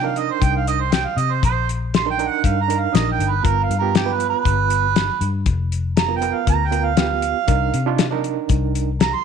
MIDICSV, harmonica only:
0, 0, Header, 1, 2, 480
1, 0, Start_track
1, 0, Key_signature, -3, "minor"
1, 0, Tempo, 505476
1, 1349, Time_signature, 4, 2, 24, 8
1, 8778, End_track
2, 0, Start_track
2, 0, Title_t, "Harmonica"
2, 0, Program_c, 0, 22
2, 49, Note_on_c, 0, 77, 93
2, 173, Note_on_c, 0, 75, 85
2, 187, Note_off_c, 0, 77, 0
2, 295, Note_on_c, 0, 72, 94
2, 309, Note_off_c, 0, 75, 0
2, 408, Note_on_c, 0, 79, 91
2, 422, Note_off_c, 0, 72, 0
2, 511, Note_off_c, 0, 79, 0
2, 533, Note_on_c, 0, 77, 83
2, 633, Note_off_c, 0, 77, 0
2, 645, Note_on_c, 0, 75, 96
2, 763, Note_on_c, 0, 72, 83
2, 778, Note_off_c, 0, 75, 0
2, 882, Note_on_c, 0, 79, 85
2, 896, Note_off_c, 0, 72, 0
2, 998, Note_on_c, 0, 77, 87
2, 1012, Note_off_c, 0, 79, 0
2, 1119, Note_on_c, 0, 75, 98
2, 1133, Note_off_c, 0, 77, 0
2, 1252, Note_on_c, 0, 72, 78
2, 1267, Note_off_c, 0, 75, 0
2, 1353, Note_off_c, 0, 72, 0
2, 1369, Note_on_c, 0, 72, 91
2, 1592, Note_off_c, 0, 72, 0
2, 1856, Note_on_c, 0, 84, 92
2, 1992, Note_off_c, 0, 84, 0
2, 1997, Note_on_c, 0, 79, 94
2, 2155, Note_on_c, 0, 78, 88
2, 2169, Note_off_c, 0, 79, 0
2, 2313, Note_on_c, 0, 77, 88
2, 2328, Note_off_c, 0, 78, 0
2, 2482, Note_on_c, 0, 82, 89
2, 2496, Note_off_c, 0, 77, 0
2, 2644, Note_on_c, 0, 77, 91
2, 2658, Note_off_c, 0, 82, 0
2, 2802, Note_on_c, 0, 75, 84
2, 2816, Note_off_c, 0, 77, 0
2, 2951, Note_off_c, 0, 75, 0
2, 2960, Note_on_c, 0, 79, 84
2, 3129, Note_on_c, 0, 71, 93
2, 3143, Note_off_c, 0, 79, 0
2, 3264, Note_on_c, 0, 70, 92
2, 3278, Note_off_c, 0, 71, 0
2, 3445, Note_on_c, 0, 77, 91
2, 3459, Note_off_c, 0, 70, 0
2, 3589, Note_off_c, 0, 77, 0
2, 3595, Note_on_c, 0, 70, 84
2, 3757, Note_on_c, 0, 67, 86
2, 3771, Note_off_c, 0, 70, 0
2, 3916, Note_on_c, 0, 71, 93
2, 3931, Note_off_c, 0, 67, 0
2, 4068, Note_off_c, 0, 71, 0
2, 4076, Note_on_c, 0, 71, 106
2, 5004, Note_off_c, 0, 71, 0
2, 5673, Note_on_c, 0, 82, 98
2, 5827, Note_off_c, 0, 82, 0
2, 5853, Note_on_c, 0, 79, 94
2, 6018, Note_on_c, 0, 77, 94
2, 6033, Note_off_c, 0, 79, 0
2, 6160, Note_off_c, 0, 77, 0
2, 6165, Note_on_c, 0, 82, 92
2, 6329, Note_on_c, 0, 79, 88
2, 6343, Note_off_c, 0, 82, 0
2, 6490, Note_on_c, 0, 77, 86
2, 6504, Note_off_c, 0, 79, 0
2, 6635, Note_off_c, 0, 77, 0
2, 6647, Note_on_c, 0, 77, 112
2, 7570, Note_off_c, 0, 77, 0
2, 8563, Note_on_c, 0, 82, 96
2, 8676, Note_on_c, 0, 84, 97
2, 8691, Note_off_c, 0, 82, 0
2, 8778, Note_off_c, 0, 84, 0
2, 8778, End_track
0, 0, End_of_file